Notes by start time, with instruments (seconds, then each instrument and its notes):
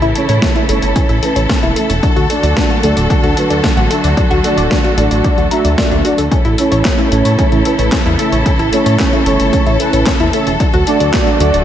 Already playing: string section C#3 E3 A3 E4 A4
0.02 analog synth bass A1, synth arpeggio sound E4, closed hi-hat
0.15 analog polysynth A3 C#4 E4 C#5, synth arpeggio sound A4, closed hi-hat
0.29 analog synth bass A2, synth arpeggio sound C#5, closed hi-hat
0.42 synth arpeggio sound C#4, kick, snare, closed hi-hat
0.56 synth arpeggio sound E4, closed hi-hat
0.69 analog synth bass G1, analog polysynth A3 C#4 E4 C#5, synth arpeggio sound A4, closed hi-hat
0.82 analog synth bass G1, synth arpeggio sound C#5, closed hi-hat
0.96 synth arpeggio sound C#4, kick, closed hi-hat
1.09 analog synth bass A1, synth arpeggio sound E4, closed hi-hat
1.23 analog polysynth A3 C#4 E4 B4, synth arpeggio sound A4, closed hi-hat
1.36 analog synth bass A1, synth arpeggio sound C#5, closed hi-hat
1.49 synth arpeggio sound C#4, kick, snare, closed hi-hat
1.63 analog synth bass E1, synth arpeggio sound E4, closed hi-hat
1.76 analog polysynth A3 C#4 E4 E5, synth arpeggio sound A4, closed hi-hat
1.90 analog synth bass E1, synth arpeggio sound C#5, closed hi-hat
2.03 string section D3 F#3 F#4, synth arpeggio sound D4, kick, closed hi-hat
2.16 analog synth bass D2, synth arpeggio sound F#4, closed hi-hat
2.30 analog polysynth A3 D4 F#4 D5, synth arpeggio sound A4, closed hi-hat
2.43 analog synth bass D2, synth arpeggio sound D5, closed hi-hat
2.56 synth arpeggio sound D4, kick, snare, closed hi-hat
2.70 synth arpeggio sound F#4, closed hi-hat
2.83 analog synth bass D2, analog polysynth A3 D4 F#4 D5, synth arpeggio sound A4, closed hi-hat
2.97 analog synth bass D1, synth arpeggio sound D5, closed hi-hat
3.10 synth arpeggio sound D4, kick, closed hi-hat
3.23 analog synth bass D2, synth arpeggio sound F#4, closed hi-hat
3.37 analog polysynth A3 D4 F#4 B4, synth arpeggio sound A4, closed hi-hat
3.50 analog synth bass D2, synth arpeggio sound D5, closed hi-hat
3.64 synth arpeggio sound D4, kick, snare, closed hi-hat
3.77 analog synth bass A1, synth arpeggio sound F#4, closed hi-hat
3.90 analog polysynth A3 D4 F#4 E5, synth arpeggio sound A4, closed hi-hat
4.04 analog synth bass D2, synth arpeggio sound D5, closed hi-hat
4.17 synth arpeggio sound D4, kick, closed hi-hat
4.31 analog synth bass D2, synth arpeggio sound F#4, closed hi-hat
4.44 analog polysynth A3 D4 F#4 D5, synth arpeggio sound A4, closed hi-hat
4.57 analog synth bass D1, synth arpeggio sound D5, closed hi-hat
4.71 synth arpeggio sound D4, kick, snare, closed hi-hat
4.84 synth arpeggio sound F#4, closed hi-hat
4.98 analog synth bass A1, analog polysynth A3 D4 F#4 D5, synth arpeggio sound A4, closed hi-hat
5.11 analog synth bass A1, synth arpeggio sound D5, closed hi-hat
5.24 synth arpeggio sound D4, kick, closed hi-hat
5.38 analog synth bass D2, synth arpeggio sound F#4, closed hi-hat
5.51 analog polysynth A3 D4 F#4 E5, synth arpeggio sound A#5, closed hi-hat
5.64 analog synth bass D2, synth arpeggio sound D5, closed hi-hat
5.78 synth arpeggio sound D5, kick, snare, closed hi-hat
5.91 analog synth bass D2, synth arpeggio sound D4, closed hi-hat
6.05 analog polysynth A3 D4 F#4 D5, synth arpeggio sound F#4, closed hi-hat
6.18 analog synth bass D2, synth arpeggio sound A4, closed hi-hat
6.31 string section C#3 E3 E4 A4, synth arpeggio sound C#4, kick, closed hi-hat
6.45 analog synth bass A1, synth arpeggio sound E4, closed hi-hat
6.58 analog polysynth A3 C#4 E4 C#5, synth arpeggio sound A4, closed hi-hat
6.72 analog synth bass A1, synth arpeggio sound C#5, closed hi-hat
6.85 synth arpeggio sound C#4, kick, snare, clap, closed hi-hat
6.98 synth arpeggio sound E4, closed hi-hat
7.12 analog synth bass A1, analog polysynth A3 C#4 E4 C#5, synth arpeggio sound A4, closed hi-hat
7.25 analog synth bass A2, synth arpeggio sound C#5, closed hi-hat
7.39 synth arpeggio sound C#4, kick, closed hi-hat
7.52 analog synth bass A1, synth arpeggio sound E4, closed hi-hat
7.65 analog polysynth A3 C#4 E4 B4, synth arpeggio sound A4, closed hi-hat
7.79 analog synth bass A1, synth arpeggio sound C#5, closed hi-hat
7.92 synth arpeggio sound C#4, kick, snare, clap, closed hi-hat
8.06 analog synth bass E2, synth arpeggio sound E4, closed hi-hat
8.19 analog polysynth A3 C#4 E4 E5, synth arpeggio sound A4, closed hi-hat
8.32 analog synth bass A1, synth arpeggio sound C#5, closed hi-hat
8.46 synth arpeggio sound C#4, kick, closed hi-hat
8.59 analog synth bass A1, synth arpeggio sound E4, closed hi-hat
8.73 analog polysynth A3 C#4 E4 C#5, synth arpeggio sound A4, closed hi-hat
8.86 analog synth bass A2, synth arpeggio sound C#5, closed hi-hat
8.99 synth arpeggio sound C#4, kick, snare, clap, closed hi-hat
9.13 synth arpeggio sound E4, closed hi-hat
9.26 analog synth bass G1, analog polysynth A3 C#4 E4 C#5, synth arpeggio sound A4, closed hi-hat
9.40 analog synth bass G1, synth arpeggio sound C#5, closed hi-hat
9.53 synth arpeggio sound C#4, kick, closed hi-hat
9.66 analog synth bass A1, synth arpeggio sound E4, closed hi-hat
9.80 analog polysynth A3 C#4 E4 B4, synth arpeggio sound A4, closed hi-hat
9.93 analog synth bass A1, synth arpeggio sound C#5, closed hi-hat
10.06 synth arpeggio sound C#4, kick, snare, clap, closed hi-hat
10.20 analog synth bass E1, synth arpeggio sound E4, closed hi-hat
10.33 analog polysynth A3 C#4 E4 E5, synth arpeggio sound A4, closed hi-hat
10.47 analog synth bass E1, synth arpeggio sound C#5, closed hi-hat
10.60 string section D3 F#3 A3 F#4, synth arpeggio sound D4, kick, closed hi-hat
10.73 analog synth bass D2, synth arpeggio sound F#4, closed hi-hat
10.87 analog polysynth A3 D4 F#4 D5, synth arpeggio sound A4, closed hi-hat
11.00 analog synth bass D2, synth arpeggio sound D5, closed hi-hat
11.14 synth arpeggio sound D4, kick, snare, clap, closed hi-hat
11.27 synth arpeggio sound F#4, closed hi-hat
11.40 analog synth bass D2, analog polysynth A3 D4 F#4 D5, synth arpeggio sound A4, closed hi-hat
11.54 analog synth bass D1, synth arpeggio sound D5, closed hi-hat